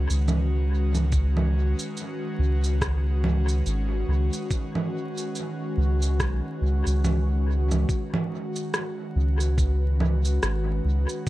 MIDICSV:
0, 0, Header, 1, 4, 480
1, 0, Start_track
1, 0, Tempo, 845070
1, 641, Time_signature, 4, 2, 24, 8
1, 6414, End_track
2, 0, Start_track
2, 0, Title_t, "Analog synth pad"
2, 0, Program_c, 0, 89
2, 0, Note_on_c, 0, 51, 75
2, 0, Note_on_c, 0, 56, 68
2, 0, Note_on_c, 0, 61, 85
2, 0, Note_on_c, 0, 66, 75
2, 0, Note_on_c, 0, 71, 68
2, 4479, Note_off_c, 0, 51, 0
2, 4480, Note_off_c, 0, 61, 0
2, 4482, Note_off_c, 0, 71, 0
2, 4483, Note_off_c, 0, 56, 0
2, 4486, Note_on_c, 0, 51, 91
2, 4573, Note_on_c, 0, 56, 74
2, 4987, Note_on_c, 0, 61, 86
2, 5247, Note_on_c, 0, 71, 83
2, 6414, Note_off_c, 0, 51, 0
2, 6414, Note_off_c, 0, 56, 0
2, 6414, Note_off_c, 0, 61, 0
2, 6414, Note_off_c, 0, 66, 0
2, 6414, Note_off_c, 0, 71, 0
2, 6414, End_track
3, 0, Start_track
3, 0, Title_t, "Sub bass"
3, 0, Program_c, 1, 38
3, 57, Note_on_c, 1, 37, 89
3, 992, Note_off_c, 1, 37, 0
3, 1357, Note_on_c, 1, 37, 92
3, 2059, Note_off_c, 1, 37, 0
3, 2080, Note_on_c, 1, 32, 89
3, 2296, Note_off_c, 1, 32, 0
3, 2318, Note_on_c, 1, 37, 84
3, 2442, Note_off_c, 1, 37, 0
3, 3279, Note_on_c, 1, 37, 94
3, 3520, Note_on_c, 1, 35, 86
3, 3529, Note_off_c, 1, 37, 0
3, 3643, Note_off_c, 1, 35, 0
3, 3757, Note_on_c, 1, 37, 89
3, 3882, Note_off_c, 1, 37, 0
3, 3899, Note_on_c, 1, 37, 90
3, 4461, Note_off_c, 1, 37, 0
3, 5201, Note_on_c, 1, 37, 95
3, 5902, Note_off_c, 1, 37, 0
3, 5924, Note_on_c, 1, 32, 90
3, 6138, Note_off_c, 1, 32, 0
3, 6160, Note_on_c, 1, 37, 81
3, 6283, Note_off_c, 1, 37, 0
3, 6414, End_track
4, 0, Start_track
4, 0, Title_t, "Drums"
4, 59, Note_on_c, 9, 82, 48
4, 115, Note_off_c, 9, 82, 0
4, 159, Note_on_c, 9, 64, 72
4, 159, Note_on_c, 9, 82, 38
4, 216, Note_off_c, 9, 64, 0
4, 216, Note_off_c, 9, 82, 0
4, 538, Note_on_c, 9, 64, 59
4, 538, Note_on_c, 9, 82, 48
4, 595, Note_off_c, 9, 64, 0
4, 595, Note_off_c, 9, 82, 0
4, 637, Note_on_c, 9, 82, 38
4, 639, Note_on_c, 9, 36, 99
4, 694, Note_off_c, 9, 82, 0
4, 696, Note_off_c, 9, 36, 0
4, 777, Note_on_c, 9, 64, 78
4, 833, Note_off_c, 9, 64, 0
4, 1018, Note_on_c, 9, 82, 51
4, 1075, Note_off_c, 9, 82, 0
4, 1120, Note_on_c, 9, 82, 40
4, 1176, Note_off_c, 9, 82, 0
4, 1499, Note_on_c, 9, 82, 48
4, 1556, Note_off_c, 9, 82, 0
4, 1599, Note_on_c, 9, 36, 95
4, 1601, Note_on_c, 9, 37, 82
4, 1601, Note_on_c, 9, 82, 39
4, 1656, Note_off_c, 9, 36, 0
4, 1658, Note_off_c, 9, 37, 0
4, 1658, Note_off_c, 9, 82, 0
4, 1840, Note_on_c, 9, 64, 79
4, 1897, Note_off_c, 9, 64, 0
4, 1979, Note_on_c, 9, 82, 50
4, 2036, Note_off_c, 9, 82, 0
4, 2081, Note_on_c, 9, 82, 38
4, 2137, Note_off_c, 9, 82, 0
4, 2460, Note_on_c, 9, 82, 52
4, 2516, Note_off_c, 9, 82, 0
4, 2559, Note_on_c, 9, 36, 95
4, 2561, Note_on_c, 9, 82, 42
4, 2616, Note_off_c, 9, 36, 0
4, 2617, Note_off_c, 9, 82, 0
4, 2700, Note_on_c, 9, 64, 78
4, 2757, Note_off_c, 9, 64, 0
4, 2940, Note_on_c, 9, 82, 51
4, 2997, Note_off_c, 9, 82, 0
4, 3041, Note_on_c, 9, 82, 41
4, 3098, Note_off_c, 9, 82, 0
4, 3421, Note_on_c, 9, 82, 50
4, 3478, Note_off_c, 9, 82, 0
4, 3520, Note_on_c, 9, 36, 94
4, 3522, Note_on_c, 9, 37, 81
4, 3522, Note_on_c, 9, 82, 40
4, 3577, Note_off_c, 9, 36, 0
4, 3579, Note_off_c, 9, 37, 0
4, 3579, Note_off_c, 9, 82, 0
4, 3901, Note_on_c, 9, 82, 52
4, 3957, Note_off_c, 9, 82, 0
4, 4002, Note_on_c, 9, 64, 78
4, 4002, Note_on_c, 9, 82, 41
4, 4058, Note_off_c, 9, 64, 0
4, 4058, Note_off_c, 9, 82, 0
4, 4382, Note_on_c, 9, 64, 64
4, 4382, Note_on_c, 9, 82, 54
4, 4439, Note_off_c, 9, 64, 0
4, 4439, Note_off_c, 9, 82, 0
4, 4481, Note_on_c, 9, 36, 109
4, 4482, Note_on_c, 9, 82, 44
4, 4538, Note_off_c, 9, 36, 0
4, 4539, Note_off_c, 9, 82, 0
4, 4622, Note_on_c, 9, 64, 80
4, 4679, Note_off_c, 9, 64, 0
4, 4862, Note_on_c, 9, 82, 54
4, 4919, Note_off_c, 9, 82, 0
4, 4963, Note_on_c, 9, 37, 77
4, 4963, Note_on_c, 9, 82, 43
4, 5020, Note_off_c, 9, 37, 0
4, 5020, Note_off_c, 9, 82, 0
4, 5342, Note_on_c, 9, 82, 55
4, 5399, Note_off_c, 9, 82, 0
4, 5440, Note_on_c, 9, 36, 105
4, 5443, Note_on_c, 9, 82, 42
4, 5497, Note_off_c, 9, 36, 0
4, 5499, Note_off_c, 9, 82, 0
4, 5682, Note_on_c, 9, 64, 80
4, 5739, Note_off_c, 9, 64, 0
4, 5822, Note_on_c, 9, 82, 57
4, 5879, Note_off_c, 9, 82, 0
4, 5923, Note_on_c, 9, 37, 76
4, 5923, Note_on_c, 9, 82, 44
4, 5980, Note_off_c, 9, 37, 0
4, 5980, Note_off_c, 9, 82, 0
4, 6301, Note_on_c, 9, 82, 55
4, 6358, Note_off_c, 9, 82, 0
4, 6414, End_track
0, 0, End_of_file